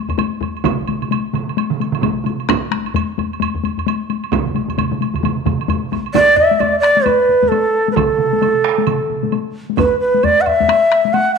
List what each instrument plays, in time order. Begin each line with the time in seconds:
0.09 taiko low-mid, taiko high, high woodblock
0.18 taiko low-mid, taiko high, high woodblock
0.32 taiko high
0.41 taiko low-mid, taiko high, high woodblock
0.55 taiko high, high woodblock
0.64 taiko, taiko mid, taiko high, high woodblock
0.79 taiko high
0.87 taiko mid, taiko high, high woodblock
1.02 taiko mid, high woodblock
1.11 taiko high, high woodblock
1.33 taiko mid, taiko high, high woodblock
1.48 taiko high, high woodblock
1.57 taiko high, high woodblock
1.70 taiko mid, taiko high
1.80 taiko high, high woodblock
1.92 taiko mid, high woodblock
2.02 taiko, taiko mid, taiko high, high woodblock
2.17 taiko high
2.24 taiko mid, taiko high, high woodblock
2.40 taiko high, high woodblock
2.49 taiko rim, taiko, taiko high, high woodblock
2.63 taiko high
2.71 taiko rim, taiko high, high woodblock
2.85 taiko high, high woodblock
2.94 taiko low-mid, taiko high, high woodblock
3.18 taiko low-mid, taiko high, high woodblock
3.31 taiko high, high woodblock
3.40 taiko low-mid, taiko high, high woodblock
3.54 taiko low-mid, taiko high
3.64 taiko low-mid, taiko high, high woodblock
3.77 taiko low-mid, taiko high, high woodblock
3.86 taiko high, high woodblock
4.00 taiko high
4.10 taiko high, high woodblock
4.24 taiko high, high woodblock
4.32 taiko, taiko low-mid, taiko mid, taiko high, high woodblock
4.45 taiko low-mid, taiko mid, taiko high
4.54 taiko low-mid, taiko mid, taiko high, high woodblock
4.68 taiko low-mid, taiko mid, taiko high, high woodblock
4.77 taiko low-mid, taiko mid, taiko high, high woodblock
4.91 taiko low-mid, taiko mid, taiko high
5.01 taiko high, high woodblock
5.14 taiko low-mid, taiko mid, taiko high, high woodblock
5.23 taiko low-mid, taiko mid, taiko high, high woodblock
5.37 taiko high
5.46 taiko low-mid, taiko mid, taiko high, high woodblock
5.60 taiko high, high woodblock
5.68 taiko low-mid, taiko mid, taiko high, high woodblock
5.82 taiko high
5.92 taiko, taiko high, high woodblock
6.06 taiko high, high woodblock
6.14 shakuhachi D5, taiko, taiko low-mid, taiko high, high woodblock
6.37 shakuhachi E5, taiko low-mid
6.51 taiko high
6.60 shakuhachi D5, taiko low-mid, taiko high, high woodblock
6.80 shakuhachi D5, taiko rim
6.84 high woodblock
6.97 taiko high
7.05 shakuhachi B4, taiko low-mid, taiko high, high woodblock
7.29 taiko low-mid
7.43 taiko low-mid, taiko high
7.48 shakuhachi A4, taiko high, high woodblock
7.88 shakuhachi B4, taiko high
7.94 shakuhachi A4, taiko, taiko mid, taiko high, high woodblock
8.19 taiko mid
8.33 taiko high
8.41 taiko mid, taiko high, high woodblock
8.64 taiko rim, high woodblock
8.78 taiko high
8.87 taiko mid, taiko high, high woodblock
9.10 taiko mid
9.23 taiko mid, taiko high
9.32 taiko high, high woodblock
9.70 taiko high
9.77 shakuhachi B4, taiko, taiko low-mid, taiko high, high woodblock
10.00 shakuhachi B4
10.14 taiko high
10.23 shakuhachi D5, taiko low-mid, taiko high, high woodblock
10.41 shakuhachi F#5
10.46 shakuhachi E5, taiko low-mid, high woodblock
10.60 taiko low-mid, taiko high
10.69 taiko rim, taiko high, high woodblock
10.92 taiko rim
11.05 taiko high
11.13 shakuhachi F#5, taiko high, high woodblock